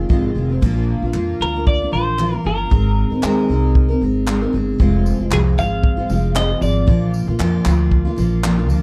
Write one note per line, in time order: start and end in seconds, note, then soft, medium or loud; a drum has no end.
0.09 0.31 G#1 medium
0.09 0.35 F2 medium
0.09 0.36 C3 medium
0.09 0.33 D#3 medium
0.09 0.35 G#3 medium
0.09 0.36 C4 medium
0.09 0.37 F4 medium
0.09 kick loud
0.35 0.57 F1 medium
0.35 0.50 D#3 medium
0.35 0.50 G#3 medium
0.35 0.49 C4 medium
0.35 0.48 F4 medium
0.49 0.62 D#3 soft
0.49 0.62 G#3 soft
0.49 0.62 C4 soft
0.49 0.62 F4 medium
0.61 0.95 A#1 loud
0.61 1.02 A#2 medium
0.61 1.03 F3 medium
0.61 1.03 A#3 medium
0.61 1.02 D4 medium
0.61 1.01 F4 medium
0.61 kick medium
0.61 crash medium
1.02 1.12 A#1 medium
1.02 1.14 A#3 soft
1.02 1.14 D4 soft
1.02 1.14 F4 soft
1.14 1.35 F2 medium
1.14 1.40 A#2 medium
1.14 1.39 F3 medium
1.14 1.40 A#3 medium
1.14 1.41 D4 medium
1.14 1.41 F4 medium
1.14 clap medium
1.40 1.83 D2 medium
1.40 1.55 F3 medium
1.40 1.55 A#3 medium
1.40 1.55 D4 medium
1.40 1.53 F4 medium
1.40 1.67 A#4 medium
1.54 1.82 A#3 soft
1.54 1.81 D4 soft
1.54 1.79 F4 medium
1.67 1.91 D5 loud
1.67 kick medium
1.80 1.92 A#3 soft
1.80 1.93 D4 soft
1.80 1.92 F4 soft
1.92 2.36 A#1 medium
1.92 2.17 F3 medium
1.92 2.18 A#3 medium
1.92 2.18 D4 medium
1.92 2.19 F4 medium
1.92 2.36 C5 medium
2.18 2.33 A#2 medium
2.18 2.33 F3 medium
2.18 2.33 A#3 medium
2.18 2.33 D4 medium
2.18 2.31 F4 medium
2.18 clap medium
2.32 2.43 A#3 soft
2.32 2.44 D4 soft
2.32 2.44 F4 medium
2.36 2.46 A#4 medium
2.43 2.66 G1 medium
2.43 2.69 F3 soft
2.43 2.71 A#3 medium
2.43 2.71 D4 soft
2.43 2.72 F4 medium
2.43 3.98 A#4 medium
2.70 3.04 G#1 loud
2.70 3.11 G#3 medium
2.70 3.11 C4 medium
2.70 3.11 D#4 medium
2.70 3.09 A#4 medium
2.70 kick medium
3.10 3.21 G#1 medium
3.10 3.22 C4 soft
3.10 3.23 D#4 soft
3.10 3.23 A#4 soft
3.23 3.44 D#2 medium
3.23 3.47 G#3 medium
3.23 3.48 C4 medium
3.23 3.50 D#4 medium
3.23 3.50 A#4 loud
3.23 clap medium
3.49 3.92 C2 medium
3.49 3.89 G#3 medium
3.49 3.90 C4 medium
3.49 3.89 D#4 medium
3.49 3.87 A#4 medium
3.75 kick medium
3.88 4.01 C4 medium
3.88 4.02 D#4 soft
3.88 4.01 A#4 medium
4.01 4.44 G#1 medium
4.01 4.26 G#3 medium
4.01 4.26 C4 medium
4.01 4.27 D#4 medium
4.01 4.28 A#4 medium
4.27 4.42 G#3 medium
4.27 4.42 C4 medium
4.27 4.42 D#4 medium
4.27 4.40 A#4 medium
4.27 clap medium
4.41 4.53 C4 soft
4.41 4.54 D#4 medium
4.41 4.53 A#4 medium
4.53 4.75 G1 medium
4.53 4.79 G#3 medium
4.53 4.80 C4 medium
4.53 4.80 D#4 medium
4.53 4.80 A#4 medium
4.78 5.13 F1 loud
4.78 5.19 F2 medium
4.78 5.20 C3 medium
4.78 5.20 F3 medium
4.78 5.20 G#3 medium
4.78 5.19 C4 medium
4.78 5.18 F4 loud
4.78 kick loud
5.06 tambourine medium
5.19 5.30 F1 medium
5.19 5.31 F3 soft
5.19 5.31 G#3 soft
5.19 5.32 C4 soft
5.19 5.31 F4 soft
5.31 5.53 C2 medium
5.31 5.57 F2 medium
5.31 5.58 C3 medium
5.31 5.56 F3 medium
5.31 5.57 G#3 medium
5.31 5.58 C4 medium
5.31 5.59 F4 medium
5.31 5.40 G#4 medium
5.31 clap medium
5.57 6.00 G#1 medium
5.57 5.98 F3 medium
5.57 5.98 G#3 medium
5.57 5.97 C4 medium
5.57 5.96 F4 medium
5.57 6.36 F5 loud
5.57 tambourine medium
5.84 kick loud
5.97 6.08 F3 soft
5.97 6.09 G#3 soft
5.97 6.10 C4 soft
5.97 6.09 F4 medium
6.09 6.52 F1 medium
6.09 6.35 F3 medium
6.09 6.35 G#3 medium
6.09 6.35 C4 medium
6.09 6.36 F4 medium
6.09 tambourine medium
6.35 6.50 F2 medium
6.35 6.50 C3 medium
6.35 6.50 F3 medium
6.35 6.50 G#3 medium
6.35 6.49 C4 medium
6.35 6.47 F4 medium
6.35 6.60 D#5 medium
6.35 clap medium
6.35 clap loud
6.49 6.59 F3 soft
6.49 6.60 G#3 soft
6.49 6.61 C4 soft
6.49 6.61 F4 medium
6.60 6.83 G#1 medium
6.60 6.86 F3 soft
6.60 6.87 G#3 medium
6.60 6.88 C4 medium
6.60 6.87 F4 medium
6.60 7.10 D5 medium
6.60 tambourine medium
6.86 7.21 A#1 loud
6.86 7.27 A#2 medium
6.86 7.28 F3 medium
6.86 7.28 A#3 medium
6.86 7.27 D4 medium
6.86 7.25 F4 loud
6.86 kick loud
7.14 tambourine medium
7.27 7.38 A#1 medium
7.27 7.38 A#3 soft
7.27 7.39 D4 soft
7.27 7.39 F4 medium
7.39 7.61 F2 medium
7.39 7.65 A#2 medium
7.39 7.64 F3 medium
7.39 7.64 A#3 medium
7.39 7.66 D4 medium
7.39 7.66 F4 loud
7.39 clap medium
7.39 clap loud
7.65 8.08 D2 medium
7.65 8.06 F3 medium
7.65 8.06 A#3 medium
7.65 8.06 D4 medium
7.65 8.04 F4 medium
7.65 clap medium
7.65 tambourine medium
7.91 kick medium
8.05 8.16 A#3 medium
8.05 8.17 D4 medium
8.05 8.17 F4 medium
8.16 8.69 A#1 medium
8.16 8.42 F3 medium
8.16 8.43 A#3 medium
8.16 8.43 D4 medium
8.16 8.44 F4 medium
8.16 tambourine medium
8.43 8.58 A#2 medium
8.43 8.58 F3 medium
8.43 8.58 A#3 medium
8.43 8.57 D4 loud
8.43 8.55 F4 loud
8.43 clap medium
8.43 clap loud
8.57 8.69 A#3 soft
8.57 8.70 D4 medium
8.57 8.69 F4 medium
8.69 8.82 D2 medium
8.69 8.82 F3 medium
8.69 8.82 A#3 medium
8.69 8.82 D4 medium
8.69 8.82 F4 medium
8.69 tambourine medium